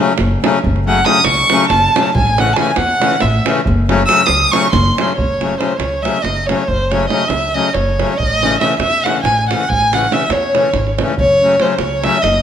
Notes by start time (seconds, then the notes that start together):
Already playing: C#3 F#3
0.00 A3 C#4
0.08 davul high
0.18 F#1, davul high
0.42 C#3 F#3 A3 C#4, davul high
0.54 davul high
0.64 F#1, davul low
0.76 davul high
0.85 C#3 F#3 A3 C#4 F#5
1.05 C#3 F#3 A3 C#4 D#6, davul high
1.25 C#2 C#6, davul high
1.50 C#3 F#3 A3 C#4, davul high
1.70 F#1 A5, davul high
1.95 C#3 F#3 A3 C#4, davul high
2.06 davul high
2.15 A1 G#5, davul low
2.27 davul high
2.38 C#3 E3 A3 C#4 F#5, davul high
2.53 C#3 E3 G#5 A5, davul high
2.57 A3 C#4
2.70 G#5
2.76 E2 F#5, davul high
2.99 C#3 E3 A3 C#4, davul high
3.12 davul high
3.20 A1 E5, davul high
3.44 C#3 E3 A3 C#4, davul high
3.55 davul high
3.65 F#1, davul low
3.87 C#3 F#3 A3 C#4, davul high
4.07 C#3 F#3 A3 C#4 E6, davul high
4.17 davul high
4.26 C#2 D#6, davul high
4.40 davul high
4.51 C#3 F#3 A3 C#4 C#6, davul high
4.63 davul high
4.72 F#1 C6, davul high, davul low
4.86 davul high
4.97 C#3 F#3 A3 C#4, davul high
5.08 davul high
5.16 F#1 C#5, davul low
5.40 C#3 F#3 A3 C#4, davul high
5.58 C#3 F#3 A3 C#4 C5, davul high
5.77 C#2 C#5, davul high
6.02 C#3 F#3 A3 C#4 E5, davul high
6.22 F#1 D#5, davul high
6.37 davul high
6.47 C#3 F#3 A3 C#4 C#5, davul high
6.68 F#1 C5, davul low
6.91 C#3 F#3 A3 C#4 C#5, davul high
7.09 C#3 F#3 A3 C#4 D#5, davul high
7.28 C#2 E5, davul high
7.54 C#3 F#3 A3 C#4 D#5
7.73 F#1 C#5, davul high
7.89 davul high
7.99 C#3 F#3 A3 C#4, davul high
8.18 A1 D#5, davul low
8.42 C#3 E3 A3 C#4, davul high
8.59 C#3 E3 A3 C#4 E5, davul high
8.79 E2 E5, davul high
9.04 C#3 E3 A3 C#4 F#5, davul high
9.23 A1 G#5, davul high
9.49 C#3 E3 A3 C#4 F#5, davul high
9.69 A1 G#5, davul low
9.82 davul high
9.92 C#3 E3 A3 C#4 F#5, davul high
10.02 davul high
10.10 C#3 E3 A3 C#4 E5, davul high
10.21 davul high
10.29 E2 C#5, davul high
10.43 davul high
10.55 C#3 E3 A3 C#4, davul high
10.73 G#1, davul high, davul low
10.87 davul high
10.99 C#3 E3 A3 C#4, davul high
11.08 davul high
11.18 F#1 C#5, davul low
11.41 C#3 F#3 A3 C#4
11.59 C#3 F#3 A3 C#4 C5, davul high
11.78 C#2 C#5, davul high
12.03 C#3 F#3 A3 C#4 E5, davul high
12.22 F#1 D#5, davul high